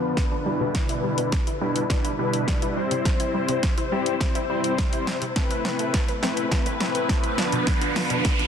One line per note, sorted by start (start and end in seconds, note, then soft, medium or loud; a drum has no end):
0.00 2.73 D3 medium
0.00 0.46 F3 medium
0.00 0.44 B3 medium
0.00 0.46 B3 medium
0.00 0.45 D4 medium
0.00 0.44 F4 medium
0.00 0.45 B4 medium
0.00 2.73 B4 medium
0.17 0.25 B4 loud
0.17 kick loud
0.17 snare medium
0.32 0.40 D4 medium
0.46 1.38 B2 medium
0.46 5.32 G3 medium
0.46 1.38 G3 medium
0.46 0.54 G3 medium
0.46 1.38 D4 medium
0.46 7.34 E4 medium
0.46 1.38 E4 medium
0.46 1.38 B4 loud
0.60 0.69 B2 medium
0.75 0.83 D5 loud
0.75 kick loud
0.75 snare medium
0.75 closed hi-hat medium
0.89 0.98 E4 medium
0.89 closed hi-hat medium
1.04 1.12 G3 medium
1.18 1.26 B2 medium
1.18 closed hi-hat medium
1.32 1.41 D5 medium
1.32 kick loud
1.32 snare medium
1.32 closed hi-hat medium
1.47 1.55 E4 medium
1.47 closed hi-hat soft
1.61 1.83 B2 loud
1.61 1.83 G3 medium
1.61 1.70 G3 medium
1.61 1.83 D4 medium
1.61 1.84 E4 medium
1.61 1.84 B4 loud
1.76 closed hi-hat soft
1.90 2.12 B2 medium
1.90 2.12 G3 medium
1.90 2.12 D4 medium
1.90 2.12 E4 medium
1.90 2.12 B4 loud
1.90 1.99 D5 medium
1.90 kick loud
1.90 snare medium
1.90 closed hi-hat medium
2.05 2.13 E4 loud
2.05 closed hi-hat medium
2.18 2.76 B2 medium
2.18 2.75 G3 medium
2.18 2.27 G3 medium
2.18 2.77 D4 medium
2.18 2.75 E4 medium
2.18 2.77 B4 loud
2.33 closed hi-hat medium
2.48 2.56 D5 loud
2.48 kick loud
2.48 snare medium
2.48 closed hi-hat medium
2.62 2.71 E4 medium
2.62 closed hi-hat medium
2.76 7.34 C3 medium
2.76 3.69 G3 medium
2.76 2.85 G3 medium
2.76 3.69 C4 medium
2.76 3.69 E4 medium
2.76 5.34 C5 medium
2.76 3.69 C5 loud
2.91 3.00 C3 medium
2.91 closed hi-hat medium
3.05 3.14 C5 loud
3.05 kick loud
3.05 snare medium
3.05 closed hi-hat medium
3.20 3.28 E4 medium
3.20 closed hi-hat medium
3.34 3.43 G3 medium
3.49 3.57 C3 medium
3.49 closed hi-hat medium
3.63 3.71 C5 medium
3.63 kick loud
3.63 snare medium
3.63 closed hi-hat medium
3.78 3.86 E4 medium
3.78 closed hi-hat soft
3.92 4.14 G3 loud
3.92 4.00 G3 medium
3.92 4.14 C4 medium
3.92 4.14 E4 medium
3.92 4.14 G4 loud
4.06 closed hi-hat soft
4.21 4.43 G3 medium
4.21 4.43 C4 medium
4.21 4.43 E4 medium
4.21 4.29 C5 medium
4.21 4.43 C5 loud
4.21 kick loud
4.21 snare medium
4.21 closed hi-hat medium
4.35 4.44 E4 medium
4.35 closed hi-hat medium
4.49 5.16 G3 medium
4.49 4.58 G3 medium
4.49 5.16 C4 medium
4.49 5.16 E4 medium
4.49 5.16 C5 loud
4.64 closed hi-hat medium
4.78 4.87 C5 loud
4.78 kick loud
4.78 snare medium
4.78 closed hi-hat medium
4.93 5.01 E4 medium
4.93 closed hi-hat soft
5.07 5.16 G3 medium
5.07 snare medium
5.22 5.30 C3 medium
5.22 closed hi-hat medium
5.36 6.03 A3 loud
5.36 7.36 A3 medium
5.36 6.03 C4 medium
5.36 6.03 E4 medium
5.36 6.03 B4 loud
5.36 8.47 B4 medium
5.36 5.45 A5 loud
5.36 kick loud
5.36 snare medium
5.36 closed hi-hat medium
5.36 riser medium
5.51 5.59 B4 medium
5.51 closed hi-hat medium
5.65 5.73 C4 medium
5.65 snare medium
5.79 5.88 A3 medium
5.79 closed hi-hat medium
5.94 6.02 A5 medium
5.94 kick loud
5.94 snare medium
5.94 closed hi-hat medium
6.08 6.17 B4 medium
6.08 closed hi-hat soft
6.23 6.45 A3 loud
6.23 6.45 C4 medium
6.23 6.31 C4 loud
6.23 6.45 E4 medium
6.23 6.45 B4 loud
6.23 snare medium
6.37 closed hi-hat medium
6.51 6.74 A3 medium
6.51 6.74 C4 medium
6.51 6.74 E4 medium
6.51 6.74 B4 medium
6.51 6.60 A5 medium
6.51 kick loud
6.51 snare medium
6.51 closed hi-hat medium
6.66 6.75 B4 medium
6.66 closed hi-hat medium
6.80 7.38 A3 medium
6.80 7.38 C4 medium
6.80 6.89 C4 medium
6.80 7.38 E4 medium
6.80 7.37 B4 loud
6.80 snare medium
6.95 closed hi-hat medium
7.09 7.18 A5 loud
7.09 kick loud
7.09 snare medium
7.09 closed hi-hat medium
7.24 7.32 B4 medium
7.24 closed hi-hat medium
7.38 8.47 D3 medium
7.38 8.30 F3 medium
7.38 7.47 F3 medium
7.38 8.30 B3 medium
7.38 8.47 B3 medium
7.38 8.30 D4 medium
7.38 8.47 F4 medium
7.38 8.31 B4 loud
7.38 snare medium
7.52 7.61 B2 medium
7.52 closed hi-hat medium
7.67 7.75 B4 loud
7.67 kick loud
7.67 snare loud
7.67 closed hi-hat medium
7.81 7.90 D4 medium
7.81 closed hi-hat medium
7.96 8.04 F3 medium
7.96 snare loud
7.96 open hi-hat medium
8.10 8.19 B2 medium
8.10 closed hi-hat medium
8.25 8.33 B4 medium
8.25 kick loud
8.25 snare loud
8.25 closed hi-hat medium
8.39 8.47 D4 medium
8.39 closed hi-hat soft